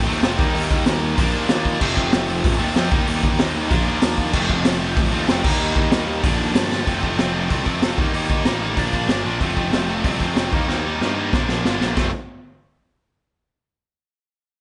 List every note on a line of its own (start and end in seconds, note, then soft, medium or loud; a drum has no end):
0.06 0.21 D#2 loud
0.06 0.20 F2 medium
0.06 0.21 C3 medium
0.06 0.22 F3 medium
0.06 0.22 A3 medium
0.06 0.21 C4 medium
0.22 0.37 F1 loud
0.22 0.37 F2 medium
0.22 0.37 C3 medium
0.22 0.38 F3 medium
0.22 0.39 A3 medium
0.22 0.39 C4 medium
0.22 snare loud
0.22 open hi-hat medium
0.37 0.52 D#2 loud
0.37 1.16 D#3 loud
0.37 1.17 G3 medium
0.37 1.17 A#3 loud
0.37 1.18 D#4 loud
0.37 kick loud
0.54 0.68 D#2 loud
0.54 open hi-hat medium
0.71 0.84 D#2 medium
0.71 kick medium
0.86 1.00 D#2 medium
0.86 snare loud
0.86 open hi-hat medium
1.02 1.15 D#2 loud
1.16 1.32 A#1 loud
1.16 1.79 A#2 medium
1.16 1.80 F3 loud
1.16 1.81 A#3 loud
1.16 1.81 D4 loud
1.16 kick loud
1.16 open hi-hat medium
1.33 1.47 D#2 loud
1.49 1.77 D#2 loud
1.49 snare loud
1.49 open hi-hat medium
1.65 kick loud
1.79 1.95 F1 medium
1.79 2.58 F2 medium
1.79 2.59 C3 medium
1.79 2.59 F3 loud
1.79 2.58 A3 medium
1.79 2.57 C4 loud
1.79 kick loud
1.79 crash loud
1.97 2.10 F1 medium
1.97 kick medium
2.12 2.26 F1 loud
2.12 snare loud
2.12 open hi-hat medium
2.28 2.42 F1 medium
2.44 2.58 A1 loud
2.44 kick loud
2.44 open hi-hat medium
2.58 2.74 D#2 loud
2.58 2.74 F2 medium
2.58 2.75 C3 medium
2.58 2.75 F3 medium
2.58 2.74 A3 medium
2.58 2.74 C4 medium
2.75 2.90 F2 medium
2.75 2.89 F2 medium
2.75 2.90 C3 medium
2.75 2.91 F3 medium
2.75 2.92 A3 medium
2.75 2.92 C4 medium
2.75 snare loud
2.75 open hi-hat medium
2.91 3.05 D#2 loud
2.91 3.69 D#3 loud
2.91 3.70 G3 loud
2.91 3.71 A#3 loud
2.91 3.71 D#4 loud
2.91 kick loud
3.07 3.21 D#2 loud
3.07 open hi-hat medium
3.23 3.37 D#2 medium
3.23 kick medium
3.39 3.53 D#2 loud
3.39 snare loud
3.39 open hi-hat medium
3.54 3.68 D#2 medium
3.69 3.84 A#1 loud
3.69 4.32 A#2 loud
3.69 4.33 F3 medium
3.69 4.33 A#3 loud
3.69 4.34 D4 loud
3.69 kick loud
3.69 open hi-hat medium
3.86 4.00 D#2 medium
4.02 4.30 D#2 medium
4.02 snare loud
4.02 open hi-hat medium
4.18 kick loud
4.33 4.47 F1 loud
4.33 5.11 F2 medium
4.33 5.12 C3 medium
4.33 5.12 F3 loud
4.33 5.12 A3 loud
4.33 5.10 C4 loud
4.33 kick loud
4.33 crash loud
4.49 4.63 F1 medium
4.49 kick medium
4.65 4.79 F1 loud
4.65 snare loud
4.65 open hi-hat medium
4.81 4.95 F1 medium
4.97 5.10 A1 loud
4.97 kick loud
4.97 open hi-hat medium
5.12 5.26 D#2 loud
5.12 5.26 F2 medium
5.12 5.27 C3 medium
5.12 5.28 F3 medium
5.12 5.28 A3 medium
5.12 5.27 C4 loud
5.27 5.42 F1 loud
5.27 5.43 F2 medium
5.27 5.43 C3 medium
5.27 5.44 F3 medium
5.27 5.44 A3 medium
5.27 snare loud
5.27 open hi-hat medium
5.32 5.45 C4 medium
5.43 5.58 D#2 loud
5.43 6.22 D#3 medium
5.43 6.23 G3 loud
5.43 6.23 A#3 loud
5.43 6.24 D#4 loud
5.43 kick loud
5.43 crash loud
5.60 5.74 D#2 loud
5.76 5.89 D#2 medium
5.76 kick loud
5.92 6.05 D#2 loud
5.92 snare loud
5.92 open hi-hat medium
6.07 6.21 D#2 medium
6.22 6.37 A#1 loud
6.22 6.85 A#2 loud
6.22 6.86 D3 loud
6.22 6.86 F3 loud
6.22 6.87 A#3 loud
6.22 6.87 D4 loud
6.22 kick loud
6.22 open hi-hat medium
6.39 6.53 D#2 loud
6.55 6.83 G2 medium
6.55 snare loud
6.55 open hi-hat medium
6.72 snare medium
6.86 7.17 F1 medium
6.86 7.03 F2 medium
6.86 7.03 C3 medium
6.86 7.03 F3 loud
6.86 7.02 A3 medium
6.86 7.01 C4 loud
6.86 kick loud
6.86 open hi-hat medium
7.02 7.16 F2 medium
7.02 7.17 C3 medium
7.02 7.17 F3 medium
7.02 7.18 A3 medium
7.02 7.19 C4 loud
7.02 kick medium
7.17 7.48 F1 medium
7.17 7.34 F2 medium
7.17 7.34 C3 medium
7.17 7.33 F3 loud
7.17 7.33 A3 loud
7.17 7.32 C4 loud
7.17 snare loud
7.17 open hi-hat medium
7.33 7.48 F2 medium
7.33 7.49 C3 medium
7.33 7.49 F3 medium
7.33 7.50 A3 medium
7.33 7.50 C4 loud
7.49 7.65 C2 medium
7.49 7.66 F2 medium
7.49 7.66 C3 medium
7.49 7.65 F3 medium
7.49 7.65 A3 loud
7.49 7.64 C4 medium
7.49 kick loud
7.49 open hi-hat medium
7.65 7.81 F2 medium
7.65 7.81 C3 medium
7.65 7.82 F3 loud
7.65 7.82 A3 medium
7.65 7.83 C4 loud
7.65 kick medium
7.81 8.00 F1 medium
7.81 7.97 F2 medium
7.81 7.97 C3 medium
7.81 7.98 F3 medium
7.81 7.98 A3 medium
7.81 7.98 C4 medium
7.81 snare loud
7.81 open hi-hat medium
7.98 8.12 D#2 medium
7.98 8.14 D#3 loud
7.98 8.14 G3 medium
7.98 8.14 A#3 loud
7.98 8.13 D#4 loud
7.98 kick loud
8.13 8.43 D#2 medium
8.13 8.28 D#3 medium
8.13 8.29 G3 medium
8.13 8.30 A#3 loud
8.13 8.30 D#4 medium
8.13 open hi-hat medium
8.29 8.46 D#3 medium
8.29 8.45 G3 medium
8.29 8.45 A#3 medium
8.29 8.44 D#4 loud
8.29 kick medium
8.45 8.75 A1 medium
8.45 8.60 D#3 medium
8.45 8.61 G3 medium
8.45 8.61 A#3 medium
8.45 8.62 D#4 loud
8.45 snare loud
8.45 open hi-hat medium
8.61 8.76 D#3 medium
8.61 8.77 G3 medium
8.61 8.77 A#3 medium
8.61 8.77 D#4 loud
8.77 8.92 A#1 loud
8.77 8.93 A#2 loud
8.77 8.93 F3 medium
8.77 8.92 A#3 loud
8.77 8.92 D4 loud
8.77 kick loud
8.77 open hi-hat medium
8.93 9.08 A#1 medium
8.93 9.07 A#2 medium
8.93 9.09 F3 medium
8.93 9.09 A#3 loud
8.93 9.10 D4 loud
8.93 kick medium
9.09 9.24 G1 medium
9.09 9.25 A#2 medium
9.09 9.25 F3 medium
9.09 9.24 A#3 medium
9.09 9.23 D4 medium
9.09 snare loud
9.09 open hi-hat medium
9.25 9.40 A#1 medium
9.25 9.40 A#2 medium
9.25 9.40 F3 medium
9.25 9.40 A#3 medium
9.25 9.40 D4 medium
9.39 9.71 F1 medium
9.39 9.56 F2 medium
9.39 9.56 C3 loud
9.39 9.55 F3 medium
9.39 9.55 A3 medium
9.39 9.54 C4 loud
9.39 kick loud
9.39 open hi-hat medium
9.55 9.70 F2 medium
9.55 9.71 C3 medium
9.55 9.71 F3 medium
9.55 9.72 A3 medium
9.55 9.72 C4 medium
9.55 kick medium
9.71 10.03 F1 medium
9.71 9.89 F2 medium
9.71 9.88 C3 loud
9.71 9.87 F3 loud
9.71 9.87 A3 loud
9.71 9.86 C4 medium
9.71 snare loud
9.71 open hi-hat soft
9.87 10.02 F2 medium
9.87 10.03 C3 medium
9.87 10.03 F3 medium
9.87 10.04 A3 medium
9.87 10.04 C4 loud
10.04 10.19 C2 loud
10.04 10.21 F2 medium
10.04 10.21 C3 medium
10.04 10.20 F3 medium
10.04 10.20 A3 medium
10.04 10.19 C4 medium
10.04 kick loud
10.04 open hi-hat medium
10.20 10.35 F2 medium
10.20 10.35 C3 medium
10.20 10.36 F3 medium
10.20 10.36 A3 loud
10.20 10.37 C4 loud
10.20 kick medium
10.35 10.51 F1 medium
10.35 10.51 F2 medium
10.35 10.52 C3 medium
10.35 10.52 F3 medium
10.35 10.52 A3 medium
10.35 10.52 C4 medium
10.35 snare loud
10.35 open hi-hat medium
10.52 10.67 D#2 medium
10.52 10.69 D#3 medium
10.52 10.69 G3 medium
10.52 10.68 A#3 medium
10.52 10.67 D#4 medium
10.52 kick loud
10.68 10.98 D#2 medium
10.68 10.84 D#3 medium
10.68 10.85 G3 medium
10.68 10.85 A#3 medium
10.68 10.86 D#4 medium
10.68 snare medium
10.85 11.02 D#3 medium
10.85 11.01 G3 medium
10.85 11.01 A#3 medium
10.85 11.00 D#4 medium
11.00 11.30 G2 medium
11.00 11.16 D#3 medium
11.00 11.17 G3 medium
11.00 11.17 A#3 medium
11.00 11.18 D#4 medium
11.00 snare medium
11.17 11.32 D#3 medium
11.17 11.32 G3 medium
11.17 11.33 A#3 medium
11.17 11.33 D#4 medium
11.33 11.48 A#1 medium
11.33 11.50 A#2 medium
11.33 11.49 D3 medium
11.33 11.49 F3 medium
11.33 11.48 A#3 loud
11.33 11.47 D4 loud
11.33 kick loud
11.33 snare medium
11.48 11.63 A#1 medium
11.48 11.63 A#2 medium
11.48 11.64 D3 medium
11.48 11.64 F3 loud
11.48 11.65 A#3 medium
11.48 11.66 D4 loud
11.48 snare medium
11.64 11.79 G1 medium
11.64 11.81 A#2 medium
11.64 11.81 D3 medium
11.64 11.80 F3 medium
11.64 11.80 A#3 medium
11.64 11.79 D4 medium
11.64 snare medium
11.80 11.95 A#1 medium
11.80 11.95 A#2 medium
11.80 11.96 D3 medium
11.80 11.96 F3 medium
11.80 11.96 A#3 medium
11.80 11.95 D4 medium
11.80 snare medium
11.96 12.11 F1 medium
11.96 12.09 F2 medium
11.96 12.09 C3 medium
11.96 12.09 F3 loud
11.96 12.10 A3 medium
11.96 12.10 C4 loud
11.96 kick medium
11.96 snare medium
11.96 crash medium